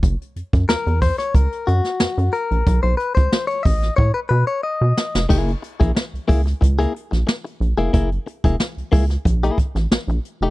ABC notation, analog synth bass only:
X:1
M:4/4
L:1/16
Q:1/4=91
K:F#mix
V:1 name="Analog synth bass" clef=bass
F,,, z F,, F,, E,, E,,2 z C,, z F,, z F,, F,, z A,,, | B,,, B,,, z C,, z2 =A,,,2 =A,, z B,, z2 B,, z ^E,,, | F,,,2 z A,,, z C,, C,,2 C,,2 z A,,, z2 A,,, ^E,,, | F,,,2 z E,,, z C,, C,,2 A,,,2 z =A,,, ^A,,, A,,, z ^E,,, |]